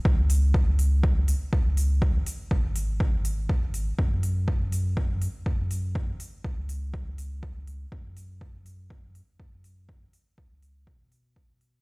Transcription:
<<
  \new Staff \with { instrumentName = "Sub bass" } { \clef bass \time 4/4 \key fis \dorian \tempo 4 = 122 cis,2~ cis,8 r8 cis,4~ | cis,8 r8 gis,,2. | fis,2~ fis,8 r8 fis,4~ | fis,8 r8 cis,2. |
fis,2~ fis,8 r8 fis,4~ | fis,8 r8 cis,4 b,2 | }
  \new DrumStaff \with { instrumentName = "Drums" } \drummode { \time 4/4 bd8 hho8 bd8 hho8 bd8 hho8 bd8 hho8 | bd8 hho8 bd8 hho8 bd8 hho8 bd8 hho8 | bd8 hho8 bd8 hho8 bd8 hho8 bd8 hho8 | bd8 hho8 bd8 hho8 bd8 hho8 bd8 hho8 |
bd8 hho8 bd8 hho8 bd8 hho8 bd8 hho8 | bd8 hho8 bd8 hho8 bd8 hho8 bd8 hho8 | }
>>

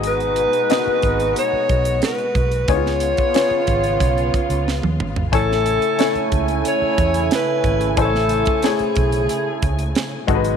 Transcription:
<<
  \new Staff \with { instrumentName = "Alto saxophone" } { \time 4/4 \key a \lydian \tempo 4 = 91 b'2 cis''4 b'4 | cis''2. r4 | a'4. r8 cis''4 b'4 | a'4 gis'2 r4 | }
  \new Staff \with { instrumentName = "Grand piano" } { \time 4/4 \key a \lydian <b fis' gis' dis''>8 r8 <ais b fis' gis' dis''>4. r4. | <b dis' eis' gis' cis''>4 <b eis' gis' cis''>4. r4. | <a e' cis'' gis''>4 <a e' cis'' gis''>4. r4. | <a e' bis' cis'' gis''>4 <a e' gis' cis''>4. r4 <gis dis' fis' a' b'>8 | }
  \new Staff \with { instrumentName = "Trombone section" } { \time 4/4 \key a \lydian <gis b dis'>2.~ <gis b dis'>8 r8 | <b cis' eis'>2.~ <b cis' eis'>8 r8 | <a cis' e'>1~ | <a cis' e'>2. r8 <gis b dis'>8 | }
  \new Staff \with { instrumentName = "String section" } { \clef bass \time 4/4 \key a \lydian <b, gis fis'>1 | <cis b eis'>1 | <cis a gis''>1~ | <cis a gis''>2.~ <cis a gis''>8 <b, fis fis'>8 | }
  \new Staff \with { instrumentName = "Fingered electric bass" } { \clef bass \time 4/4 \key a \lydian gis,,8. r8. gis,,8 r8 b,,8 r8 b,,8 | cis,8. r8. gis,,8 b,,8 r16 cis,8 dis,16 gis,,8 | a,,8. r8. cis,8 r8 e,8 r8 gis,,8 | a,,8. r8. b,,8 r8 cis,8 r8 gis,,8 | }
  \new DrumStaff \with { instrumentName = "Drums" } \drummode { \time 4/4 hh16 hh16 hh16 hh16 <hh sn>8 <hh bd>16 hh16 hh8 <hh bd>16 hh16 <hh sn>16 hh16 <hh bd>16 hh16 | <hh bd>16 sn16 hh16 <hh bd>16 <hh sn>8 <hh bd>16 hh16 <hh bd>16 hh16 <hh bd>16 hh16 sn16 tommh16 toml16 tomfh16 | <hh bd>16 sn16 hh16 hh16 <hh sn>16 hh16 <hh bd>16 hh16 hh8 <hh bd>16 hh16 <hh sn>8 <hh bd>16 hh16 | <hh bd>16 sn16 hh16 <hh bd>16 <hh sn>16 hh16 <hh bd>16 hh16 hh8 <hh bd>16 hh16 <hh sn>8 <hh bd>16 hh16 | }
>>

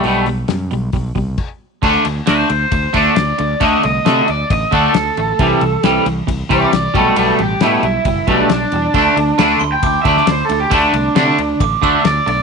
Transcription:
<<
  \new Staff \with { instrumentName = "Glockenspiel" } { \time 4/4 \key d \dorian \tempo 4 = 135 r1 | r1 | r1 | r1 |
r1 | a''4 b''8 c'''8 d'''2~ | d'''2 d'''8 e'''4. | }
  \new Staff \with { instrumentName = "Overdriven electric guitar" } { \time 4/4 \key d \dorian r1 | r4 c''4. d''4. | ees''8 ees''4 d''8 ees''8 a'4.~ | a'4. r4 d''4 a'8~ |
a'8 g'8 e'4. d'8 d'4~ | d'4 \tuplet 3/2 { r4 g''8~ g''8 e''8 d''8 c''8 a'8 g'8 } | d'2 r4 d''8 d''8 | }
  \new Staff \with { instrumentName = "Clean electric guitar" } { \clef bass \time 4/4 \key d \dorian <b, g a>8 <b, g>8 <b, g>8 <b, g>8 <b, g>8 <b, g>8 r4 | <d a d'>8 <d a>8 <d a d'>8 <d a>8 <d a>8 <d a d'>8 <d a>8 <d a>8 | <d a d'>8 <d a>8 <d a d'>8 <d a>8 <d a>8 <d a d'>8 <d a>8 <d a>8 | <c e g>8 <c e>8 <c e g>8 <c e>8 <c e>8 <c e g>8 <c e>8 <b, g a>8 |
<b, g a>8 <b, g>8 <b, g a>8 <b, g>8 <b, g>8 <b, g a>8 <b, g>8 <b, g>8 | <d a d'>8 <d a>8 <d a d'>8 <d a>8 <d a>8 <d a d'>8 <d a>8 <d a>8 | <d a d'>8 <d a>8 <d a d'>8 a8 <d a>8 <d a d'>8 <d a>8 <d a>8 | }
  \new Staff \with { instrumentName = "Fingered electric bass" } { \clef bass \time 4/4 \key d \dorian b,,4 fis,8 b,,8 b,,8 c,8 r4 | d,8 d,8 d,8 d,8 d,8 d,8 d,8 d,8 | d,8 c,8 c8 d,8 a,,8 d,8 d,8 a,,8 | c,8 c,8 c,8 c,8 c,8 c,8 c,8 b,,8 |
b,,8 a,,8 a,8 b,,8 fis,,8 b,,8 b,,8 e,8 | d,8 d,8 d,8 d,8 d,8 d,8 d,8 d,8 | d,8 c,8 c8 d,8 a,,8 d,8 d,8 b,,8 | }
  \new DrumStaff \with { instrumentName = "Drums" } \drummode { \time 4/4 hho8 hho8 <hho sn>8 hho8 <hho bd>8 <hho bd>8 <cymc bd>4 | <cymc bd>8 cymr8 <cymr sn>8 cymr8 <bd cymr>8 <bd cymr>8 <cymr sn>8 cymr8 | <bd cymr>8 cymr8 <cymr sn>8 cymr8 <bd cymr>8 <bd cymr>8 <cymr sn>8 cymr8 | <bd cymr>8 cymr8 <cymr sn>8 cymr8 <bd cymr>8 <bd cymr>8 <cymr sn>8 <bd cymr>8 |
cymr8 cymr8 <cymr sn>8 cymr8 <bd cymr>8 <bd cymr>8 <cymr sn>8 cymr8 | <bd cymr>8 cymr8 <cymr sn>8 cymr8 <bd cymr>8 <bd cymr>16 sn16 <cymr sn>8 cymr8 | <bd cymr>8 cymr8 <cymr sn>8 cymr8 <bd cymr>8 <bd cymr>8 <cymr sn>8 cymr8 | }
>>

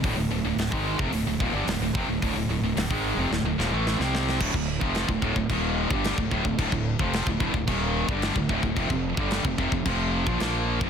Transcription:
<<
  \new Staff \with { instrumentName = "Distorted electric guitar" } { \clef bass \time 4/4 \key d \phrygian \tempo 4 = 110 <d, a,>16 <d, a,>16 <d, a,>16 <d, a,>16 <d, a,>16 <gis, ees gis>8 <f, c>16 <d, a,>16 <d, a,>16 <ees, bes,>16 <g, d>16 <d, a,>16 <d, a,>16 <f, c>16 <d, a,>16 | <d, a,>16 <d, a,>16 <d, a,>16 <d, a,>16 <d, a,>16 <gis, ees gis>8 <f, c>16 <d, a,>16 <d, a,>16 <ees, bes,>16 <a, e a>8 <c g c'>8. | <d, a,>16 <d, a,>8 <f, c f>8 <d, a,>16 <d, a,>16 <d, a,>16 <ees, bes, ees>8. <g, d g>8 <d, a,>16 <d, a,>16 <d, a,>16 | <d, a,>16 <d, a,>8 <f, c f>8 <d, a,>16 <d, a,>16 <d, a,>16 <ees, bes, ees>8. <g, d g>8 <d, a,>16 <d, a,>16 <d, a,>16 |
<f, c>16 <f, c>8 <g, d g>8 <f, c>16 <f, c>16 <f, c>16 <f, c f>8. <bes, f>16 <bes, f bes>8. <f, c>16 | }
  \new Staff \with { instrumentName = "Distorted electric guitar" } { \clef bass \time 4/4 \key d \phrygian <d, a,>16 <d, a,>16 <d, a,>16 <d, a,>16 <d, a,>16 <gis, ees gis>8 <f, c>16 <d, a,>16 <d, a,>16 <ees, bes,>16 <g, d>16 <d, a,>16 <d, a,>16 <f, c>16 <d, a,>16 | <d, a,>16 <d, a,>16 <d, a,>16 <d, a,>16 <d, a,>16 <gis, ees gis>8 <f, c>16 <d, a,>16 <d, a,>16 <ees, bes,>16 <a, e a>8 <c g c'>8. | <d, a,>16 <d, a,>8 <f, c f>8 <d, a,>16 <d, a,>16 <d, a,>16 <ees, bes, ees>8. <g, d g>8 <d, a,>16 <d, a,>16 <d, a,>16 | <d, a,>16 <d, a,>8 <f, c f>8 <d, a,>16 <d, a,>16 <d, a,>16 <ees, bes, ees>8. <g, d g>8 <d, a,>16 <d, a,>16 <d, a,>16 |
<f, c>16 <f, c>8 <g, d g>8 <f, c>16 <f, c>16 <f, c>16 <f, c f>8. <bes, f>16 <bes, f bes>8. <f, c>16 | }
  \new Staff \with { instrumentName = "Overdriven electric guitar" } { \clef bass \time 4/4 \key d \phrygian <d, a,>16 <d, a,>16 <d, a,>16 <d, a,>16 <d, a,>16 <gis, ees gis>8 <f, c>16 <d, a,>16 <d, a,>16 <ees, bes,>16 <g, d>16 <d, a,>16 <d, a,>16 <f, c>16 <d, a,>16 | <d, a,>16 <d, a,>16 <d, a,>16 <d, a,>16 <d, a,>16 <gis, ees gis>8 <f, c>16 <d, a,>16 <d, a,>16 <ees, bes,>16 <a, e a>8 <c g c'>8. | <d, a,>16 <d, a,>8 <f, c f>8 <d, a,>16 <d, a,>16 <d, a,>16 <ees, bes, ees>8. <g, d g>8 <d, a,>16 <d, a,>16 <d, a,>16 | <d, a,>16 <d, a,>8 <f, c f>8 <d, a,>16 <d, a,>16 <d, a,>16 <ees, bes, ees>8. <g, d g>8 <d, a,>16 <d, a,>16 <d, a,>16 |
<f, c>16 <f, c>8 <g, d g>8 <f, c>16 <f, c>16 <f, c>16 <f, c f>8. <bes, f>16 <bes, f bes>8. <f, c>16 | }
  \new Staff \with { instrumentName = "Fingered electric bass" } { \clef bass \time 4/4 \key d \phrygian d,,16 d,,16 d,,16 d,,16 d,,16 gis,,8 f,,16 d,,16 d,,16 ees,,16 g,,16 d,,16 d,,16 f,,16 d,,16 | d,,16 d,,16 d,,16 d,,16 d,,16 gis,,8 f,,16 d,,16 d,,16 ees,,16 a,,8 c,8. | d,,16 d,,8 f,,8 d,,16 d,,16 d,,16 ees,,8. g,,8 d,,16 d,,16 d,,16 | d,,16 d,,8 f,,8 d,,16 d,,16 d,,16 ees,,8. g,,8 d,,16 d,,16 d,,16 |
f,,16 f,,8 g,,8 f,,16 f,,16 f,,16 f,,8. bes,,16 bes,,8. f,,16 | }
  \new DrumStaff \with { instrumentName = "Drums" } \drummode { \time 4/4 <hho bd>4 <hho sn>16 bd8 bd16 hho8 bd8 <hho sn>8 bd8 | <hho bd>4 <hho sn>16 bd8. sn8 sn8 sn16 sn16 sn16 sn16 | <cymc bd>16 bd8 bd16 <cymc sn>16 bd16 bd16 bd16 <cymc bd>8. bd16 <cymc sn>16 bd16 bd16 bd16 | <cymc bd>16 bd8 bd16 <cymc sn>16 bd16 bd16 bd16 <cymc bd>8. bd16 <cymc sn>16 bd16 bd16 bd16 |
<cymc bd>16 bd8 bd16 <cymc sn>16 bd16 bd16 bd16 <cymc bd>8. bd16 <cymc sn>8. bd16 | }
>>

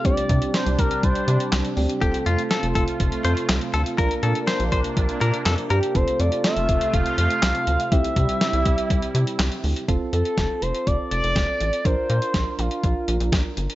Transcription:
<<
  \new Staff \with { instrumentName = "Analog synth lead" } { \time 4/4 \key f \major \tempo 4 = 122 d''4 c''8 bes'8 c''4. r8 | r1 | r2. r8 g'8 | c''8 d''8 e''4 f''8 f''8 f''4 |
e''2. r4 | r8 a'4 c''8 d''8 d''4. | c''4. f'2 r8 | }
  \new Staff \with { instrumentName = "Clean electric guitar" } { \time 4/4 \key f \major r1 | g'8 f'8 a'8 a'16 r8. c''16 r8. a'16 r16 | bes'8 a'8 c''8 c''16 r8. bes'8 a'16 r16 bes'16 r16 | r1 |
r1 | r1 | r1 | }
  \new Staff \with { instrumentName = "Synth keys" } { \time 4/4 \key f \major <c' d' g'>2.~ <c' d' g'>8 <c' d' g'>8 | <c' f' a'>2~ <c' f' a'>8 <c' f' a'>4. | <d' f' bes'>1 | <c' f' a'>1 |
<c' e' g'>1 | <c' f' a'>1 | <d' f' bes'>1 | }
  \new Staff \with { instrumentName = "Analog synth pad" } { \time 4/4 \key f \major << { <g d'>1 | <a f'>1 | <bes d'>1 | <a f'>1 |
<g e'>1 | r1 | r1 | } \\ { c1~ | c1 | c1 | c1~ |
c1 | r1 | r1 | } >> }
  \new Staff \with { instrumentName = "Analog synth bass" } { \clef bass \time 4/4 \key f \major c,16 r16 c16 r8 c,16 c,16 r16 c,16 r16 c16 r16 c,16 r16 d,16 r16 | f,,16 r16 f,16 r8 f,,16 f,,16 r16 f,,16 r16 f,16 r16 c,16 r16 d,16 r16 | bes,,16 r16 bes,16 r8 bes,,16 bes,,16 r16 bes,,16 r16 bes,16 r16 f,16 r16 g,16 r16 | f,,16 r16 f,16 r8 f,,16 f,,16 r16 f,,16 r16 f,16 r16 c,16 r16 d,16 r16 |
c,16 r16 c16 r8 c,16 c,16 r16 c,16 r16 c16 r16 c,16 r16 d,16 r16 | f,,16 r16 f,16 r16 f,,16 r16 f,,16 r16 f,,16 r16 f,,16 f,,16 f,,16 r16 a,,16 r16 | bes,,16 r16 bes,16 r16 bes,,16 r16 bes,,16 r16 bes,,16 r16 bes,,16 bes,,16 bes,,16 r16 g,,16 r16 | }
  \new DrumStaff \with { instrumentName = "Drums" } \drummode { \time 4/4 <hh bd>16 hh16 <hh bd>16 hh16 <hh sn>16 hh16 <hh bd>16 hh16 <hh bd>16 hh16 hh16 hh16 <hc hh sn>16 hh16 hho16 hh16 | <hh bd>16 hh16 hh16 hh16 <hh sn>16 hh16 <hh bd>16 hh16 <hh bd>16 hh16 hh16 hh16 <hc hh sn>16 hh16 hh16 hh16 | <hh bd>16 hh16 hh16 hh16 <hh sn>16 hh16 <hh bd>16 hh16 <hh bd>16 hh16 hh16 hh16 <hc hh sn>16 hh16 hh16 hh16 | <hh bd>16 hh16 hh16 hh16 <hh sn>16 hh16 <hh bd>16 hh16 <hh bd>16 hh16 hh16 hh16 <hc hh sn>16 hh16 hh16 hh16 |
<hh bd>16 hh16 <hh bd>16 hh16 <hh sn>16 hh16 <hh bd>16 hh16 <hh bd>16 hh16 hh16 hh16 <hc hh sn>16 hh16 hho16 hh16 | <hh bd>8 hh16 hh16 <hh bd sn>8 hh16 hh16 <hh bd>8 hh16 hh16 <hh bd sn>8 hh16 hh16 | <hh bd>8 hh16 hh16 <hh bd sn>8 hh16 hh16 <hh bd>8 hh16 hh16 <hh bd sn>8 hh16 hh16 | }
>>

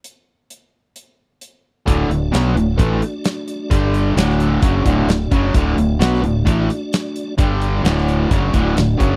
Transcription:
<<
  \new Staff \with { instrumentName = "Tonewheel organ" } { \time 4/4 \key d \major \tempo 4 = 131 r1 | <a d' fis' d''>1 | <d' g' d''>4 <a d' fis' d''>2.~ | <a d' fis' d''>1 |
<d' g' d''>4 <a d' fis' d''>2. | }
  \new Staff \with { instrumentName = "Distorted electric guitar" } { \clef bass \time 4/4 \key d \major r1 | <d, a, d>8 <d, a,>8 <b, fis b>8 <d, a,>8 <a, e a>8 r4. | <g, d g>4 <d, a, d>4 <fis, cis fis>8 <d, a, d>8 <d, a,>8 <fis, cis fis>8 | <d, a, d>8 <d, a,>8 <b, fis b>8 <d, a,>8 <a, e a>8 r4. |
<g, d g>4 <d, a, d>4 <fis, cis fis>8 <d, a, d>8 <d, a,>8 <fis, cis fis>8 | }
  \new Staff \with { instrumentName = "Fingered electric bass" } { \clef bass \time 4/4 \key d \major r1 | d,,8 d,,8 b,,8 d,,8 a,,8 r4. | g,,4 d,,4 fis,,8 d,,8 d,,8 fis,,8 | d,,8 d,,8 b,,8 d,,8 a,,8 r4. |
g,,4 d,,4 fis,,8 d,,8 d,,8 fis,,8 | }
  \new DrumStaff \with { instrumentName = "Drums" } \drummode { \time 4/4 hh4 hh4 hh4 hh4 | <hh bd>8 hh8 <hh sn>8 hh8 <hh bd>8 hh8 <hh sn>8 hh8 | <hh bd>8 hh8 <hh sn>8 hh8 <hh bd>8 <hh bd>8 <hh sn>8 <hh bd>8 | <hh bd>8 hh8 <hh sn>16 sn16 hh8 <hh bd>8 hh8 <hh sn>8 hh8 |
<hh bd>8 hh8 <hh sn>16 sn16 hh8 <hh bd>8 <hh bd>8 <hh sn>8 <hh bd>8 | }
>>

